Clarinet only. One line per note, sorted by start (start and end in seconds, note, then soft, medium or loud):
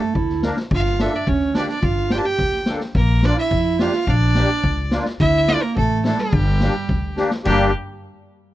0.00 0.16 A3 medium
0.14 0.43 E4 medium
0.72 1.15 F4 medium
1.14 1.26 D4 medium
1.27 1.56 C#4 medium
1.54 1.68 D4 medium
1.69 1.81 D4 medium
1.81 2.21 F4 medium
2.24 2.64 G4 medium
2.96 3.21 A#3 medium
3.23 3.38 D4 medium
3.37 3.80 E4 medium
3.79 4.07 F4 loud
4.08 4.88 D4 loud
5.21 5.64 E4 loud
5.63 5.79 A#3 medium
5.77 6.05 A3 medium
6.06 6.21 A3 medium
6.19 7.17 G3 medium
7.45 7.71 G3 medium